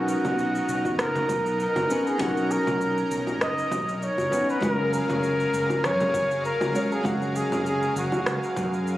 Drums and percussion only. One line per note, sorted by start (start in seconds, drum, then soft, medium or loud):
0.08 cabasa medium
0.24 high bongo medium
0.24 low conga medium
0.24 cabasa soft
0.39 cabasa soft
0.55 cabasa soft
0.69 cabasa medium
0.85 kick medium
0.85 high bongo medium
0.85 cabasa soft
0.99 cross-stick medium
0.99 cabasa soft
1.15 low conga medium
1.15 cabasa soft
1.29 kick loud
1.29 high bongo medium
1.29 cabasa medium
1.46 cabasa soft
1.60 cabasa soft
1.76 high bongo loud
1.76 low conga medium
1.76 cabasa soft
1.90 cabasa medium
2.07 cabasa soft
2.20 kick loud
2.20 high bongo medium
2.20 cabasa soft
2.37 cabasa soft
2.51 cabasa medium
2.67 high bongo medium
2.67 low conga medium
2.67 cabasa soft
2.81 cabasa soft
2.98 cabasa soft
3.11 cabasa medium
3.27 high bongo medium
3.27 cabasa soft
3.41 cross-stick medium
3.41 cabasa soft
3.58 cabasa soft
3.72 kick loud
3.72 high bongo medium
3.72 low conga medium
3.72 cabasa medium
3.89 cabasa soft
4.02 cabasa soft
4.18 high bongo medium
4.18 cabasa soft
4.32 kick medium
4.32 cabasa medium
4.49 cabasa soft
4.62 kick loud
4.62 high bongo medium
4.62 cabasa soft
4.93 cabasa medium
5.09 high bongo medium
5.09 low conga medium
5.09 cabasa soft
5.23 cabasa soft
5.40 cabasa soft
5.54 cabasa medium
5.70 kick medium
5.70 high bongo medium
5.70 cabasa soft
5.84 cross-stick medium
5.84 cabasa soft
6.00 low conga medium
6.00 cabasa soft
6.14 kick loud
6.14 high bongo medium
6.14 cabasa medium
6.31 cabasa soft
6.45 cabasa soft
6.61 high bongo medium
6.61 low conga medium
6.61 cabasa soft
6.75 cabasa medium
6.92 cabasa soft
7.04 kick loud
7.04 high bongo medium
7.04 cabasa soft
7.22 cabasa soft
7.36 cabasa medium
7.52 high bongo medium
7.52 low conga medium
7.52 cabasa soft
7.66 cabasa soft
7.83 cabasa soft
7.96 cabasa medium
8.12 kick medium
8.12 high bongo medium
8.12 cabasa soft
8.26 cross-stick medium
8.26 cabasa soft
8.43 cabasa soft
8.56 kick loud
8.56 high bongo medium
8.56 low conga medium
8.56 cabasa medium
8.74 cabasa soft
8.87 cabasa soft